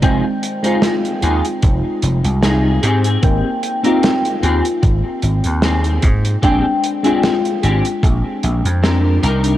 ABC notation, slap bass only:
X:1
M:4/4
L:1/16
Q:"Swing 16ths" 1/4=75
K:Bbmix
V:1 name="Slap bass" clef=bass
F,,, z4 z E,, z F,,, z F,,, C,,3 A,,2 | A,,, z4 z E,, z A,,, z A,,, E,,3 A,,2 | B,,, z4 z A,,, z B,,, z B,,, F,,3 C,,2 |]